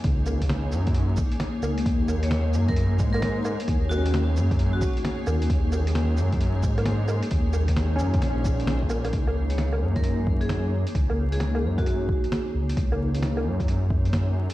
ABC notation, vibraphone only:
X:1
M:4/4
L:1/16
Q:"Swing 16ths" 1/4=132
K:Dbmix
V:1 name="Vibraphone"
z16 | z3 d2 z2 B B z2 B2 z3 | z2 G2 z4 z G G z4 z | z16 |
z16 | z3 d2 z2 B B z2 A2 z3 | z3 A2 z2 G6 z3 | z16 |]